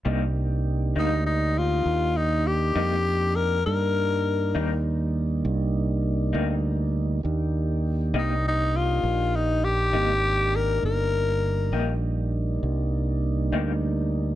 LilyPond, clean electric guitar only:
\new Staff \with { instrumentName = "Clean electric guitar" } { \clef bass \time 12/8 \key c \minor \tempo 4. = 67 <c g bes ees'>8 r4 <c g bes ees'>8 r2 r8 <c g bes ees'>8 r4 | r4. <c g bes ees'>8 r2 r8 <c g bes ees'>8 r4 | r4. <c g bes ees'>8 r2 r8 <c g bes ees'>8 r4 | r4. <c g bes ees'>8 r2 r8 <c g bes ees'>8 r4 | }